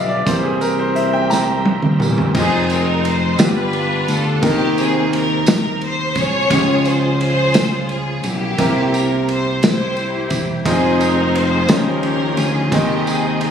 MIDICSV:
0, 0, Header, 1, 6, 480
1, 0, Start_track
1, 0, Tempo, 692042
1, 186, Time_signature, 6, 3, 24, 8
1, 9369, End_track
2, 0, Start_track
2, 0, Title_t, "String section"
2, 0, Program_c, 0, 48
2, 1649, Note_on_c, 0, 68, 110
2, 1652, Note_on_c, 0, 63, 80
2, 1654, Note_on_c, 0, 60, 83
2, 1864, Note_off_c, 0, 68, 0
2, 1877, Note_on_c, 0, 70, 95
2, 2115, Note_off_c, 0, 70, 0
2, 2117, Note_on_c, 0, 72, 95
2, 2335, Note_off_c, 0, 63, 0
2, 2336, Note_off_c, 0, 60, 0
2, 2355, Note_off_c, 0, 72, 0
2, 2369, Note_on_c, 0, 71, 115
2, 2371, Note_on_c, 0, 62, 84
2, 2372, Note_on_c, 0, 65, 80
2, 2836, Note_on_c, 0, 69, 103
2, 2841, Note_off_c, 0, 71, 0
2, 3055, Note_off_c, 0, 62, 0
2, 3055, Note_off_c, 0, 65, 0
2, 3075, Note_off_c, 0, 69, 0
2, 3083, Note_on_c, 0, 67, 117
2, 3090, Note_on_c, 0, 58, 86
2, 3090, Note_on_c, 0, 60, 85
2, 3302, Note_off_c, 0, 67, 0
2, 3326, Note_on_c, 0, 68, 100
2, 3560, Note_off_c, 0, 68, 0
2, 3563, Note_on_c, 0, 70, 104
2, 3774, Note_off_c, 0, 58, 0
2, 3774, Note_off_c, 0, 60, 0
2, 3782, Note_off_c, 0, 70, 0
2, 3802, Note_on_c, 0, 70, 105
2, 4021, Note_off_c, 0, 70, 0
2, 4049, Note_on_c, 0, 72, 119
2, 4281, Note_off_c, 0, 72, 0
2, 4282, Note_on_c, 0, 73, 127
2, 4292, Note_on_c, 0, 68, 91
2, 4294, Note_on_c, 0, 65, 86
2, 4756, Note_on_c, 0, 72, 104
2, 4758, Note_off_c, 0, 73, 0
2, 4975, Note_off_c, 0, 68, 0
2, 4976, Note_off_c, 0, 65, 0
2, 4981, Note_off_c, 0, 72, 0
2, 4989, Note_on_c, 0, 72, 127
2, 4998, Note_on_c, 0, 65, 91
2, 4999, Note_on_c, 0, 68, 92
2, 5443, Note_off_c, 0, 72, 0
2, 5472, Note_off_c, 0, 68, 0
2, 5480, Note_on_c, 0, 68, 98
2, 5687, Note_off_c, 0, 65, 0
2, 5713, Note_on_c, 0, 67, 107
2, 5716, Note_off_c, 0, 68, 0
2, 5722, Note_on_c, 0, 64, 81
2, 5725, Note_on_c, 0, 58, 85
2, 6192, Note_off_c, 0, 67, 0
2, 6200, Note_on_c, 0, 70, 92
2, 6408, Note_off_c, 0, 64, 0
2, 6410, Note_off_c, 0, 58, 0
2, 6435, Note_off_c, 0, 70, 0
2, 6443, Note_on_c, 0, 72, 96
2, 6660, Note_off_c, 0, 72, 0
2, 6687, Note_on_c, 0, 72, 111
2, 6699, Note_on_c, 0, 64, 82
2, 6700, Note_on_c, 0, 67, 81
2, 7190, Note_off_c, 0, 72, 0
2, 7375, Note_off_c, 0, 64, 0
2, 7375, Note_off_c, 0, 67, 0
2, 7398, Note_on_c, 0, 68, 100
2, 7408, Note_on_c, 0, 60, 79
2, 7411, Note_on_c, 0, 63, 84
2, 7616, Note_off_c, 0, 68, 0
2, 7631, Note_on_c, 0, 70, 90
2, 7868, Note_off_c, 0, 70, 0
2, 7875, Note_on_c, 0, 72, 100
2, 8088, Note_off_c, 0, 60, 0
2, 8089, Note_off_c, 0, 63, 0
2, 8110, Note_off_c, 0, 72, 0
2, 8116, Note_on_c, 0, 70, 104
2, 8125, Note_on_c, 0, 61, 80
2, 8128, Note_on_c, 0, 67, 87
2, 8340, Note_off_c, 0, 70, 0
2, 8348, Note_on_c, 0, 70, 109
2, 8569, Note_off_c, 0, 70, 0
2, 8581, Note_on_c, 0, 68, 101
2, 8804, Note_off_c, 0, 61, 0
2, 8806, Note_off_c, 0, 67, 0
2, 8821, Note_off_c, 0, 68, 0
2, 8827, Note_on_c, 0, 67, 100
2, 8837, Note_on_c, 0, 60, 75
2, 9059, Note_on_c, 0, 68, 89
2, 9064, Note_off_c, 0, 67, 0
2, 9299, Note_off_c, 0, 68, 0
2, 9303, Note_on_c, 0, 70, 98
2, 9369, Note_off_c, 0, 60, 0
2, 9369, Note_off_c, 0, 70, 0
2, 9369, End_track
3, 0, Start_track
3, 0, Title_t, "Grand piano"
3, 0, Program_c, 1, 0
3, 0, Control_c, 1, 64, 127
3, 0, Note_on_c, 1, 53, 55
3, 0, Note_on_c, 1, 57, 48
3, 0, Note_on_c, 1, 59, 54
3, 0, Note_on_c, 1, 74, 99
3, 0, Note_on_c, 1, 75, 61
3, 0, Note_on_c, 1, 76, 89
3, 0, Note_on_c, 1, 77, 82
3, 58, Note_off_c, 1, 74, 0
3, 58, Note_on_c, 1, 74, 85
3, 176, Note_on_c, 1, 52, 52
3, 180, Note_on_c, 1, 55, 55
3, 181, Note_on_c, 1, 72, 81
3, 183, Note_on_c, 1, 58, 61
3, 186, Note_off_c, 1, 74, 0
3, 194, Control_c, 1, 64, 0
3, 195, Note_off_c, 1, 59, 0
3, 195, Note_off_c, 1, 77, 0
3, 197, Note_off_c, 1, 53, 0
3, 198, Note_off_c, 1, 57, 0
3, 198, Note_off_c, 1, 76, 0
3, 199, Note_off_c, 1, 75, 0
3, 301, Note_on_c, 1, 68, 74
3, 307, Note_off_c, 1, 72, 0
3, 315, Control_c, 1, 64, 127
3, 422, Note_on_c, 1, 70, 86
3, 428, Note_off_c, 1, 68, 0
3, 547, Note_on_c, 1, 72, 85
3, 549, Note_off_c, 1, 70, 0
3, 662, Note_on_c, 1, 76, 79
3, 671, Note_off_c, 1, 72, 0
3, 787, Note_on_c, 1, 79, 90
3, 789, Note_off_c, 1, 76, 0
3, 876, Note_off_c, 1, 52, 0
3, 878, Note_off_c, 1, 55, 0
3, 879, Note_off_c, 1, 58, 0
3, 903, Note_on_c, 1, 82, 88
3, 912, Note_off_c, 1, 79, 0
3, 1383, Note_on_c, 1, 52, 54
3, 1385, Note_on_c, 1, 55, 46
3, 1388, Note_on_c, 1, 58, 60
3, 1600, Note_off_c, 1, 82, 0
3, 1603, Note_off_c, 1, 52, 0
3, 1604, Note_off_c, 1, 55, 0
3, 1606, Note_off_c, 1, 58, 0
3, 1623, Note_on_c, 1, 56, 69
3, 1625, Note_on_c, 1, 60, 62
3, 1628, Note_on_c, 1, 65, 65
3, 1629, Note_on_c, 1, 63, 65
3, 1633, Note_on_c, 1, 67, 59
3, 1640, Control_c, 1, 64, 0
3, 1676, Note_on_c, 1, 68, 82
3, 1677, Note_off_c, 1, 67, 0
3, 1769, Control_c, 1, 64, 127
3, 2342, Note_off_c, 1, 65, 0
3, 2349, Note_off_c, 1, 56, 0
3, 2349, Note_off_c, 1, 60, 0
3, 2350, Note_on_c, 1, 55, 67
3, 2350, Note_on_c, 1, 59, 65
3, 2351, Note_on_c, 1, 62, 62
3, 2352, Note_off_c, 1, 63, 0
3, 2352, Note_on_c, 1, 43, 65
3, 2352, Note_on_c, 1, 65, 68
3, 2354, Note_on_c, 1, 67, 76
3, 2361, Control_c, 1, 64, 0
3, 2375, Note_off_c, 1, 68, 0
3, 2494, Control_c, 1, 64, 127
3, 3045, Note_off_c, 1, 43, 0
3, 3063, Note_on_c, 1, 58, 71
3, 3067, Note_on_c, 1, 48, 64
3, 3071, Note_on_c, 1, 51, 75
3, 3072, Note_off_c, 1, 55, 0
3, 3072, Note_off_c, 1, 59, 0
3, 3072, Note_on_c, 1, 63, 66
3, 3073, Note_off_c, 1, 62, 0
3, 3073, Note_off_c, 1, 65, 0
3, 3074, Note_off_c, 1, 67, 0
3, 3076, Note_on_c, 1, 79, 65
3, 3081, Note_on_c, 1, 70, 78
3, 3083, Control_c, 1, 64, 0
3, 3193, Control_c, 1, 64, 127
3, 3765, Note_off_c, 1, 51, 0
3, 4481, Note_off_c, 1, 58, 0
3, 4483, Note_off_c, 1, 48, 0
3, 4486, Note_off_c, 1, 63, 0
3, 4488, Note_off_c, 1, 79, 0
3, 4490, Note_off_c, 1, 70, 0
3, 4506, Note_on_c, 1, 56, 70
3, 4513, Note_on_c, 1, 49, 74
3, 4515, Note_on_c, 1, 61, 71
3, 4518, Note_on_c, 1, 53, 65
3, 4520, Note_on_c, 1, 67, 65
3, 4524, Control_c, 1, 64, 0
3, 4562, Note_off_c, 1, 67, 0
3, 4654, Control_c, 1, 64, 127
3, 5205, Note_off_c, 1, 49, 0
3, 5920, Note_off_c, 1, 56, 0
3, 5925, Note_off_c, 1, 61, 0
3, 5926, Note_off_c, 1, 53, 0
3, 5949, Note_on_c, 1, 58, 71
3, 5953, Note_on_c, 1, 60, 61
3, 5954, Note_on_c, 1, 48, 66
3, 5958, Note_on_c, 1, 64, 62
3, 5960, Note_on_c, 1, 67, 65
3, 5961, Control_c, 1, 64, 0
3, 5964, Note_on_c, 1, 70, 83
3, 6063, Control_c, 1, 64, 127
3, 6644, Note_off_c, 1, 48, 0
3, 7359, Note_off_c, 1, 58, 0
3, 7361, Note_off_c, 1, 60, 0
3, 7363, Note_off_c, 1, 64, 0
3, 7364, Note_off_c, 1, 67, 0
3, 7367, Note_off_c, 1, 70, 0
3, 7390, Note_on_c, 1, 60, 66
3, 7391, Note_on_c, 1, 63, 65
3, 7391, Note_on_c, 1, 65, 67
3, 7392, Note_on_c, 1, 68, 61
3, 7395, Note_on_c, 1, 72, 74
3, 7397, Control_c, 1, 64, 0
3, 7511, Control_c, 1, 64, 127
3, 8098, Note_off_c, 1, 63, 0
3, 8100, Note_off_c, 1, 65, 0
3, 8103, Note_off_c, 1, 72, 0
3, 8105, Note_on_c, 1, 61, 67
3, 8106, Note_off_c, 1, 60, 0
3, 8107, Note_off_c, 1, 68, 0
3, 8108, Note_on_c, 1, 63, 68
3, 8109, Note_on_c, 1, 49, 65
3, 8111, Note_on_c, 1, 65, 62
3, 8111, Note_on_c, 1, 79, 65
3, 8113, Note_on_c, 1, 72, 74
3, 8116, Control_c, 1, 64, 0
3, 8240, Control_c, 1, 64, 127
3, 8796, Note_off_c, 1, 49, 0
3, 8817, Note_off_c, 1, 63, 0
3, 8818, Note_on_c, 1, 56, 72
3, 8820, Note_on_c, 1, 48, 62
3, 8822, Note_off_c, 1, 61, 0
3, 8822, Note_off_c, 1, 79, 0
3, 8825, Note_off_c, 1, 65, 0
3, 8826, Note_off_c, 1, 72, 0
3, 8827, Note_on_c, 1, 51, 73
3, 8828, Note_on_c, 1, 63, 63
3, 8831, Control_c, 1, 64, 0
3, 8832, Note_on_c, 1, 79, 71
3, 8959, Control_c, 1, 64, 127
3, 9369, Note_off_c, 1, 48, 0
3, 9369, Note_off_c, 1, 51, 0
3, 9369, Note_off_c, 1, 56, 0
3, 9369, Note_off_c, 1, 63, 0
3, 9369, Note_off_c, 1, 79, 0
3, 9369, End_track
4, 0, Start_track
4, 0, Title_t, "Tonewheel organ"
4, 0, Program_c, 2, 16
4, 0, Note_on_c, 2, 55, 56
4, 0, Note_on_c, 2, 62, 50
4, 0, Note_on_c, 2, 65, 48
4, 0, Note_on_c, 2, 71, 68
4, 156, Note_off_c, 2, 55, 0
4, 157, Note_off_c, 2, 71, 0
4, 159, Note_off_c, 2, 65, 0
4, 160, Note_off_c, 2, 62, 0
4, 181, Note_on_c, 2, 70, 67
4, 185, Note_on_c, 2, 55, 54
4, 189, Note_on_c, 2, 60, 50
4, 190, Note_on_c, 2, 64, 58
4, 1600, Note_off_c, 2, 70, 0
4, 1603, Note_off_c, 2, 55, 0
4, 1605, Note_off_c, 2, 60, 0
4, 1605, Note_off_c, 2, 64, 0
4, 7390, Note_on_c, 2, 65, 57
4, 7391, Note_on_c, 2, 63, 55
4, 7392, Note_on_c, 2, 56, 59
4, 7392, Note_on_c, 2, 60, 55
4, 7394, Note_on_c, 2, 72, 71
4, 8098, Note_off_c, 2, 65, 0
4, 8099, Note_off_c, 2, 63, 0
4, 8100, Note_off_c, 2, 72, 0
4, 8107, Note_off_c, 2, 56, 0
4, 8107, Note_off_c, 2, 60, 0
4, 8107, Note_on_c, 2, 53, 55
4, 8107, Note_on_c, 2, 65, 59
4, 8108, Note_on_c, 2, 61, 69
4, 8108, Note_on_c, 2, 63, 61
4, 8108, Note_on_c, 2, 72, 78
4, 8139, Note_off_c, 2, 53, 0
4, 8147, Note_on_c, 2, 53, 70
4, 8806, Note_off_c, 2, 63, 0
4, 8815, Note_on_c, 2, 63, 58
4, 8815, Note_on_c, 2, 75, 68
4, 8816, Note_on_c, 2, 56, 68
4, 8816, Note_on_c, 2, 79, 54
4, 8817, Note_on_c, 2, 48, 63
4, 8823, Note_off_c, 2, 65, 0
4, 8824, Note_off_c, 2, 61, 0
4, 8824, Note_off_c, 2, 72, 0
4, 8843, Note_off_c, 2, 53, 0
4, 9369, Note_off_c, 2, 48, 0
4, 9369, Note_off_c, 2, 56, 0
4, 9369, Note_off_c, 2, 63, 0
4, 9369, Note_off_c, 2, 75, 0
4, 9369, Note_off_c, 2, 79, 0
4, 9369, End_track
5, 0, Start_track
5, 0, Title_t, "Fingered electric bass"
5, 0, Program_c, 3, 33
5, 0, Note_on_c, 3, 35, 81
5, 163, Note_off_c, 3, 35, 0
5, 183, Note_on_c, 3, 36, 92
5, 1361, Note_off_c, 3, 36, 0
5, 1388, Note_on_c, 3, 28, 84
5, 1610, Note_off_c, 3, 28, 0
5, 1627, Note_on_c, 3, 29, 98
5, 2323, Note_off_c, 3, 29, 0
5, 2349, Note_on_c, 3, 31, 92
5, 2804, Note_off_c, 3, 31, 0
5, 2833, Note_on_c, 3, 38, 94
5, 3054, Note_off_c, 3, 38, 0
5, 3072, Note_on_c, 3, 39, 111
5, 4245, Note_off_c, 3, 39, 0
5, 4272, Note_on_c, 3, 36, 92
5, 4494, Note_off_c, 3, 36, 0
5, 4514, Note_on_c, 3, 37, 109
5, 5685, Note_off_c, 3, 37, 0
5, 5716, Note_on_c, 3, 35, 86
5, 5935, Note_off_c, 3, 35, 0
5, 5955, Note_on_c, 3, 36, 102
5, 7123, Note_off_c, 3, 36, 0
5, 7150, Note_on_c, 3, 28, 86
5, 7370, Note_off_c, 3, 28, 0
5, 7390, Note_on_c, 3, 29, 93
5, 8079, Note_off_c, 3, 29, 0
5, 8105, Note_on_c, 3, 39, 102
5, 8556, Note_off_c, 3, 39, 0
5, 8580, Note_on_c, 3, 38, 90
5, 8801, Note_off_c, 3, 38, 0
5, 8823, Note_on_c, 3, 39, 101
5, 9369, Note_off_c, 3, 39, 0
5, 9369, End_track
6, 0, Start_track
6, 0, Title_t, "Drums"
6, 184, Note_on_c, 9, 36, 88
6, 186, Note_on_c, 9, 42, 90
6, 190, Note_on_c, 9, 54, 52
6, 254, Note_off_c, 9, 36, 0
6, 255, Note_off_c, 9, 42, 0
6, 259, Note_off_c, 9, 54, 0
6, 425, Note_on_c, 9, 42, 45
6, 427, Note_on_c, 9, 54, 55
6, 494, Note_off_c, 9, 42, 0
6, 496, Note_off_c, 9, 54, 0
6, 667, Note_on_c, 9, 42, 56
6, 736, Note_off_c, 9, 42, 0
6, 907, Note_on_c, 9, 54, 83
6, 918, Note_on_c, 9, 38, 47
6, 977, Note_off_c, 9, 54, 0
6, 987, Note_off_c, 9, 38, 0
6, 1148, Note_on_c, 9, 48, 67
6, 1217, Note_off_c, 9, 48, 0
6, 1266, Note_on_c, 9, 47, 70
6, 1335, Note_off_c, 9, 47, 0
6, 1386, Note_on_c, 9, 45, 82
6, 1400, Note_on_c, 9, 54, 54
6, 1455, Note_off_c, 9, 45, 0
6, 1469, Note_off_c, 9, 54, 0
6, 1511, Note_on_c, 9, 43, 82
6, 1580, Note_off_c, 9, 43, 0
6, 1628, Note_on_c, 9, 36, 95
6, 1628, Note_on_c, 9, 49, 87
6, 1639, Note_on_c, 9, 54, 61
6, 1697, Note_off_c, 9, 49, 0
6, 1698, Note_off_c, 9, 36, 0
6, 1708, Note_off_c, 9, 54, 0
6, 1871, Note_on_c, 9, 51, 42
6, 1875, Note_on_c, 9, 54, 60
6, 1940, Note_off_c, 9, 51, 0
6, 1944, Note_off_c, 9, 54, 0
6, 2116, Note_on_c, 9, 51, 53
6, 2185, Note_off_c, 9, 51, 0
6, 2349, Note_on_c, 9, 51, 61
6, 2350, Note_on_c, 9, 54, 94
6, 2356, Note_on_c, 9, 38, 106
6, 2418, Note_off_c, 9, 51, 0
6, 2420, Note_off_c, 9, 54, 0
6, 2426, Note_off_c, 9, 38, 0
6, 2588, Note_on_c, 9, 51, 48
6, 2657, Note_off_c, 9, 51, 0
6, 2832, Note_on_c, 9, 51, 57
6, 2836, Note_on_c, 9, 54, 64
6, 2901, Note_off_c, 9, 51, 0
6, 2906, Note_off_c, 9, 54, 0
6, 3070, Note_on_c, 9, 51, 80
6, 3071, Note_on_c, 9, 36, 99
6, 3073, Note_on_c, 9, 54, 57
6, 3139, Note_off_c, 9, 51, 0
6, 3140, Note_off_c, 9, 36, 0
6, 3142, Note_off_c, 9, 54, 0
6, 3314, Note_on_c, 9, 51, 36
6, 3315, Note_on_c, 9, 54, 65
6, 3383, Note_off_c, 9, 51, 0
6, 3385, Note_off_c, 9, 54, 0
6, 3560, Note_on_c, 9, 51, 59
6, 3629, Note_off_c, 9, 51, 0
6, 3790, Note_on_c, 9, 54, 101
6, 3795, Note_on_c, 9, 51, 64
6, 3802, Note_on_c, 9, 38, 115
6, 3859, Note_off_c, 9, 54, 0
6, 3864, Note_off_c, 9, 51, 0
6, 3872, Note_off_c, 9, 38, 0
6, 4033, Note_on_c, 9, 51, 49
6, 4102, Note_off_c, 9, 51, 0
6, 4268, Note_on_c, 9, 51, 62
6, 4271, Note_on_c, 9, 36, 86
6, 4282, Note_on_c, 9, 54, 66
6, 4337, Note_off_c, 9, 51, 0
6, 4341, Note_off_c, 9, 36, 0
6, 4351, Note_off_c, 9, 54, 0
6, 4512, Note_on_c, 9, 51, 84
6, 4513, Note_on_c, 9, 36, 106
6, 4513, Note_on_c, 9, 54, 61
6, 4582, Note_off_c, 9, 36, 0
6, 4582, Note_off_c, 9, 51, 0
6, 4582, Note_off_c, 9, 54, 0
6, 4752, Note_on_c, 9, 54, 60
6, 4754, Note_on_c, 9, 51, 42
6, 4821, Note_off_c, 9, 54, 0
6, 4824, Note_off_c, 9, 51, 0
6, 4998, Note_on_c, 9, 51, 53
6, 5068, Note_off_c, 9, 51, 0
6, 5230, Note_on_c, 9, 51, 65
6, 5232, Note_on_c, 9, 54, 86
6, 5238, Note_on_c, 9, 38, 127
6, 5300, Note_off_c, 9, 51, 0
6, 5301, Note_off_c, 9, 54, 0
6, 5307, Note_off_c, 9, 38, 0
6, 5473, Note_on_c, 9, 51, 46
6, 5542, Note_off_c, 9, 51, 0
6, 5712, Note_on_c, 9, 51, 64
6, 5721, Note_on_c, 9, 54, 60
6, 5781, Note_off_c, 9, 51, 0
6, 5790, Note_off_c, 9, 54, 0
6, 5954, Note_on_c, 9, 51, 84
6, 5955, Note_on_c, 9, 36, 102
6, 5959, Note_on_c, 9, 54, 58
6, 6024, Note_off_c, 9, 36, 0
6, 6024, Note_off_c, 9, 51, 0
6, 6028, Note_off_c, 9, 54, 0
6, 6200, Note_on_c, 9, 51, 37
6, 6200, Note_on_c, 9, 54, 67
6, 6270, Note_off_c, 9, 51, 0
6, 6270, Note_off_c, 9, 54, 0
6, 6441, Note_on_c, 9, 51, 51
6, 6510, Note_off_c, 9, 51, 0
6, 6677, Note_on_c, 9, 51, 59
6, 6679, Note_on_c, 9, 54, 89
6, 6685, Note_on_c, 9, 38, 116
6, 6746, Note_off_c, 9, 51, 0
6, 6748, Note_off_c, 9, 54, 0
6, 6754, Note_off_c, 9, 38, 0
6, 6912, Note_on_c, 9, 51, 44
6, 6982, Note_off_c, 9, 51, 0
6, 7146, Note_on_c, 9, 51, 62
6, 7150, Note_on_c, 9, 36, 82
6, 7155, Note_on_c, 9, 54, 60
6, 7216, Note_off_c, 9, 51, 0
6, 7219, Note_off_c, 9, 36, 0
6, 7224, Note_off_c, 9, 54, 0
6, 7391, Note_on_c, 9, 36, 99
6, 7393, Note_on_c, 9, 51, 80
6, 7399, Note_on_c, 9, 54, 57
6, 7460, Note_off_c, 9, 36, 0
6, 7462, Note_off_c, 9, 51, 0
6, 7469, Note_off_c, 9, 54, 0
6, 7633, Note_on_c, 9, 51, 40
6, 7635, Note_on_c, 9, 54, 62
6, 7702, Note_off_c, 9, 51, 0
6, 7705, Note_off_c, 9, 54, 0
6, 7875, Note_on_c, 9, 51, 57
6, 7945, Note_off_c, 9, 51, 0
6, 8105, Note_on_c, 9, 51, 60
6, 8105, Note_on_c, 9, 54, 99
6, 8112, Note_on_c, 9, 38, 117
6, 8174, Note_off_c, 9, 51, 0
6, 8174, Note_off_c, 9, 54, 0
6, 8182, Note_off_c, 9, 38, 0
6, 8344, Note_on_c, 9, 51, 50
6, 8413, Note_off_c, 9, 51, 0
6, 8581, Note_on_c, 9, 51, 60
6, 8589, Note_on_c, 9, 54, 62
6, 8650, Note_off_c, 9, 51, 0
6, 8659, Note_off_c, 9, 54, 0
6, 8822, Note_on_c, 9, 36, 102
6, 8824, Note_on_c, 9, 51, 79
6, 8829, Note_on_c, 9, 54, 55
6, 8892, Note_off_c, 9, 36, 0
6, 8894, Note_off_c, 9, 51, 0
6, 8898, Note_off_c, 9, 54, 0
6, 9065, Note_on_c, 9, 54, 62
6, 9067, Note_on_c, 9, 51, 41
6, 9134, Note_off_c, 9, 54, 0
6, 9136, Note_off_c, 9, 51, 0
6, 9300, Note_on_c, 9, 51, 59
6, 9369, Note_off_c, 9, 51, 0
6, 9369, End_track
0, 0, End_of_file